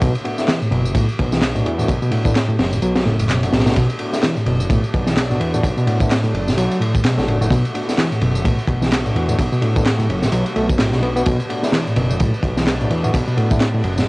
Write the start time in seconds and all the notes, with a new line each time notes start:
0.01 B1 B2, kick, ride, tambourine
0.15 ride, tambourine
0.24 A3 B3 D4 F#4, ride
0.38 A3 B3 D4 E4, snare, tambourine
0.48 E3, snare, clap, ride, tambourine
0.61 A2, tambourine
0.71 F#1 B2, ride, high conga
0.85 tambourine, low conga
0.95 B1 A2, kick, ride, tambourine
1.09 tambourine
1.19 B1, kick, ride
1.32 E3, snare, tambourine
1.41 snare, clap, ride, tambourine
1.55 A2 A3 B3 D4 F#4, tambourine
1.66 E2, ride
1.78 A2 A3 B3 D4 F#4, tambourine, high conga, low conga
1.88 B1, kick, ride, tambourine
2.02 B2, tambourine
2.12 A2 A3 B3 D4 F#4, ride
2.25 A3 B3 D4 E4, kick, tambourine
2.35 snare, clap, ride, tambourine
2.49 A2, ride, tambourine
2.59 F#1, snare, ride, high conga
2.73 A2, tambourine, low conga
2.82 B1 F#3, ride, tambourine
2.96 snare, ride, tambourine
3.06 F#1 A2, snare, high conga
3.19 F#1, ride, tambourine
3.29 B2, snare, clap, tambourine
3.43 A3 B3 D4 F#4, ride, tambourine, high conga
3.52 B1 A2, snare, ride
3.60 snare, ride
3.66 A2 A3 B3 D4 F#4, snare, ride, tambourine
3.72 snare, ride
3.76 B1 B2 A3 D4, kick, ride, tambourine
3.90 ride, tambourine
3.99 A3 B3 D4 F#4, ride
4.13 A3 B3 D4 E4, snare, tambourine
4.23 E3, snare, clap, ride, tambourine
4.36 A2, tambourine
4.46 F#1 B2, ride, high conga
4.60 tambourine, low conga
4.70 B1 A2, kick, ride, tambourine
4.84 tambourine
4.94 B1, kick, ride
5.07 E3, snare, tambourine
5.17 snare, clap, ride, tambourine
5.30 A2 A3 B3 D4 F#4, tambourine
5.40 E2, ride
5.53 A2 A3 B3 D4 F#4, tambourine, high conga, low conga
5.63 B1, kick, ride, tambourine
5.77 B2, tambourine
5.86 A2 A3 B3 D4 F#4, ride
6.00 A3 B3 D4 E4, kick, tambourine
6.11 snare, clap, ride, tambourine
6.24 A2, ride, tambourine
6.34 F#1, ride, high conga
6.47 A2, snare, tambourine, low conga
6.57 B1 F#3, ride, tambourine
6.71 ride, tambourine
6.80 A2, ride, high conga
6.95 kick, tambourine
7.04 B2, snare, clap, ride, tambourine
7.18 A1 A3 B3 D4 F#4, snare, tambourine, high conga
7.28 F#1 A2, ride
7.41 F#1 A2 A3 B3 D4 F#4, tambourine
7.50 B1 B2 F#4, kick, ride, tambourine
7.65 ride, tambourine
7.74 A3 B3 D4 F#4, ride
7.88 A3 B3 D4 E4, snare, tambourine
7.98 E3, snare, clap, ride, tambourine
8.12 A2, tambourine
8.21 F#1 B2, ride, high conga
8.35 tambourine, low conga
8.45 B1 A2, kick, ride, tambourine
8.59 tambourine
8.67 B1, kick, ride
8.82 E3, snare, tambourine
8.92 snare, clap, ride, tambourine
9.05 A2 A3 B3 D4 F#4, tambourine
9.15 E2, ride
9.28 A2 A3 B3 D4 F#4, tambourine, high conga, low conga
9.38 B1, kick, ride, tambourine
9.52 B2, tambourine
9.62 A2 A3 B3 D4 F#4, ride
9.75 A3 B3 D4 E4, kick, tambourine
9.85 snare, clap, ride, tambourine
9.99 A2, ride, tambourine, high conga
10.09 F#1, ride, high conga
10.22 A2, snare, tambourine, low conga
10.32 B1 F#3, ride, tambourine
10.46 ride, tambourine
10.56 B1 A3, ride, high conga
10.69 kick, tambourine
10.79 A2, snare, clap, ride, tambourine
10.92 B2 A3 B3 D4 F#4, snare, tambourine, high conga
11.03 B3, ride
11.16 A3 B3 D4 F#4, tambourine
11.26 B1 B2 B3 D4, kick, ride, tambourine
11.40 ride, tambourine
11.49 A3 B3 D4 F#4, ride
11.63 A3 B3 D4 E4, snare, tambourine
11.72 E3, snare, clap, ride, tambourine
11.87 A2, tambourine
11.96 F#1 B2, ride, high conga
12.10 tambourine, low conga
12.20 B1 A2, kick, ride, tambourine
12.34 tambourine
12.43 B1, kick, ride
12.57 E3, snare, tambourine
12.67 snare, clap, ride, tambourine
12.80 A2 A3 B3 D4 F#4, tambourine
12.90 E2, ride
13.03 A2 A3 B3 D4 F#4, tambourine, high conga, low conga
13.14 B1, kick, ride, tambourine
13.28 B2, tambourine
13.37 A2 A3 B3 D4 F#4, ride
13.51 A3 B3 D4 E4, kick, tambourine
13.60 snare, clap, ride, tambourine
13.74 A2, ride, tambourine
13.84 F#1, ride, high conga
13.97 A2, snare, tambourine, low conga